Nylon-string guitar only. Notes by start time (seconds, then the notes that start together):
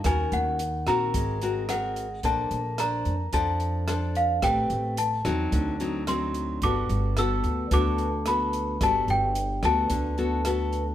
0.04 D#3 C#4 F#4 A#4
0.87 C4 F#4 A#4
1.15 G#3
1.42 C4 F#4 A#4
1.69 C4 F#4 A#4
2.24 A#3 D4 A4 C5
2.79 D4 C5
3.33 F3 D4 A4 C5
3.87 D4 A4 C5
4.42 A3 C4 G4 B4
5.25 F#3 C4 D#4
5.53 D3
5.80 F#3 C4 D#4
6.07 F#3 C4 D#4
6.63 G3 B3 F#4 A4
7.17 B3 F#4 A4
7.71 D3 B3 F#4 A4
8.27 B3 F#4 A4
8.82 G3 B3 F#4 A4
9.64 B3 F#4 A4
9.91 D3
10.18 B3 F#4 A4
10.45 B3 F#4 A4